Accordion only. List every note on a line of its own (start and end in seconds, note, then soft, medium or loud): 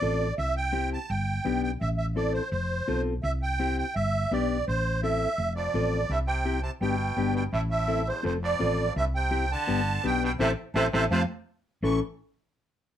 0.00 0.34 D5 medium
0.38 0.54 E5 loud
0.57 0.89 G5 loud
0.93 1.10 A5 medium
1.10 1.62 G5 medium
1.63 1.71 G5 medium
1.81 1.89 E5 medium
1.98 2.06 E5 medium
2.16 2.33 D5 medium
2.34 2.50 C5 medium
2.51 3.02 C5 medium
3.23 3.31 E5 loud
3.43 3.77 G5 loud
3.78 3.95 G5 medium
3.95 4.32 E5 medium
4.32 4.65 D5 medium
4.68 5.01 C5 medium
5.03 5.53 E5 medium
5.56 6.11 D5 medium
6.11 6.19 E5 medium
6.27 6.61 G5 medium
6.63 6.71 A5 medium
6.82 7.34 G5 medium
7.36 7.44 G5 medium
7.53 7.61 E5 medium
7.71 8.08 E5 medium
8.08 8.24 C5 medium
8.26 8.33 C5 medium
8.44 8.93 D5 loud
8.97 9.05 E5 loud
9.15 9.51 G5 loud
9.52 10.06 A5 loud
10.06 10.23 G5 loud
10.25 10.32 G5 loud
10.40 10.51 C5 loud
10.40 10.51 E5 medium
10.40 10.51 A5 loud
10.75 10.87 C5 loud
10.75 10.87 E5 loud
10.75 10.86 A5 loud
10.93 11.04 C5 loud
10.93 11.05 E5 loud
10.93 11.05 A5 medium
11.11 11.23 C5 loud
11.11 11.23 F5 loud
11.11 11.22 A5 loud
11.84 12.00 C#6 medium